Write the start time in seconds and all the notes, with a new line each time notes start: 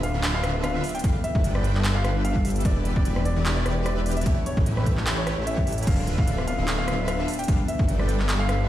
Already playing: D1 B3 D4 G4 A4
0.03 F4 F5, closed hi-hat
0.14 D1 D3 D4 F4 B4 E5
0.23 E4, clap, closed hi-hat
0.34 D4 F5
0.43 D1 D3 D4 F4 B4 E5, cross-stick, closed hi-hat
0.54 B3
0.64 F4 F5, cross-stick, closed hi-hat
0.84 F4, open hi-hat
0.89 closed hi-hat
0.95 D4 G5, closed hi-hat
0.99 closed hi-hat
1.04 G1 G3 D4 A4 B4 F5, kick, closed hi-hat
1.15 B3
1.24 G4 E5, closed hi-hat
1.35 G1 G3 D4 A4 B4 A5, kick
1.44 G1 G3 D4 F4 A4 B4 G5, closed hi-hat
1.55 D4 D5, cross-stick
1.64 closed hi-hat
1.75 G1 G3 B3 D4 A4 B4 E5, clap
1.84 G4, clap, closed hi-hat
1.95 F5
2.05 F4, cross-stick, closed hi-hat
2.16 D4
2.25 F5, closed hi-hat
2.36 B3, kick
2.45 G4, open hi-hat
2.50 closed hi-hat
2.56 closed hi-hat
2.60 closed hi-hat
2.65 E1 E3 E4 G4 B4 D5, kick, closed hi-hat
2.76 D4
2.85 closed hi-hat
2.96 E1 E3 B3 E4 G4 B4 D5, kick
3.05 E1 E3 E4 G4 B4 D5, closed hi-hat
3.16 cross-stick
3.25 E4 D5, closed hi-hat
3.36 E1 E3 D4 E4 G4 B4 D5
3.46 clap, closed hi-hat
3.56 B3 D5
3.66 E1 E3 E4 G4 B4 D5, cross-stick, closed hi-hat
3.86 E4 D5, cross-stick, closed hi-hat
3.97 D4
4.06 open hi-hat
4.11 closed hi-hat
4.17 B3 E5, closed hi-hat
4.21 closed hi-hat
4.26 A1 A3 E4 G4 A4 B4 C#5, kick, closed hi-hat
4.46 G4 C#5, closed hi-hat
4.57 A1 A3 E4 G4 B4 G5, kick
4.66 A1 A3 E4 G4 B4 E5, closed hi-hat
4.77 C#4 B4, cross-stick
4.86 A4, kick, closed hi-hat
4.97 A1 A3 E4 G4 B4 C#5, clap
5.07 G4, clap, closed hi-hat
5.17 E4 C#5
5.27 cross-stick, closed hi-hat
5.38 A1 A3 E4 G4 B4 C#5
5.47 C#4 E5, closed hi-hat
5.58 kick
5.67 A4, open hi-hat
5.72 closed hi-hat
5.78 A4, closed hi-hat
5.83 closed hi-hat
5.87 D1 D3 D4 F4 B4 E5 F5, kick, closed hi-hat, crash
6.07 F4, closed hi-hat
6.18 D1 D3 D4 F4 B4 E5 F5, kick
6.27 D1 D3 D4 F4 B4 E5, closed hi-hat
6.38 B3, cross-stick
6.48 F4 F5, closed hi-hat
6.58 D1 D3 D4 F4 B4 E5
6.68 F4, clap, closed hi-hat
6.79 D4 F5
6.88 D1 D3 D4 F4 B4 E5, cross-stick, closed hi-hat
6.99 B3
7.08 F4 F5, cross-stick, closed hi-hat
7.28 G4, open hi-hat
7.34 closed hi-hat
7.39 D4 G5, closed hi-hat
7.44 closed hi-hat
7.48 G1 G3 D4 A4 B4 F5, kick, closed hi-hat
7.59 B3
7.68 G4 E5, closed hi-hat
7.79 G1 G3 D4 A4 B4 A5, kick
7.89 G1 G3 D4 G4 A4 B4 G5, closed hi-hat
7.99 D4 D5, cross-stick
8.09 closed hi-hat
8.20 G1 G3 B3 D4 A4 B4 E5, clap
8.29 G4, clap, closed hi-hat
8.40 F5
8.49 G4, cross-stick, closed hi-hat
8.60 D4